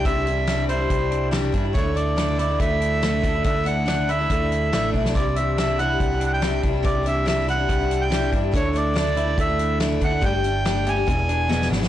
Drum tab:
HH |x-x-x-x-x-x-x-x-|x-x-x-x-x-x-x-x-|x-x-x-x-x-x-x---|x-x-x-x-x-x-x-x-|
SD |----o-------o---|----o-------o---|----o-------o--o|----o-------o---|
BD |o-------o-----o-|o-------o-----o-|o-------o-----o-|o-------o-----o-|

HH |x-x-x-x-x-x-x-x-|x-x-x-x-x-x-x-x-|x-x-x-x-x-x-----|
SD |----o-------o---|----o-------o---|----o-------oooo|
BD |o-------o-----o-|o-------o-----o-|o-------o-------|